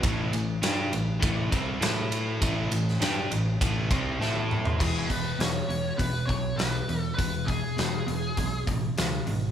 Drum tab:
CC |----------------|----------------|x---------------|----------------|
RD |x-x-x-x-x-x-x-x-|x-x-x-x-x-x-----|----------------|----------------|
HH |----------------|----------------|--o-o-o-o-o-o-o-|o-o-o-o-o-o-o-o-|
SD |----o-------o---|---oo-------o---|----o-------o---|----o-------o---|
T1 |----------------|-------------o--|----------------|----------------|
T2 |----------------|--------------o-|----------------|----------------|
FT |----------------|---------------o|----------------|----------------|
BD |o-------o-o-----|o-------o-o-----|o-o-----o-o-----|o-o-----o-o-----|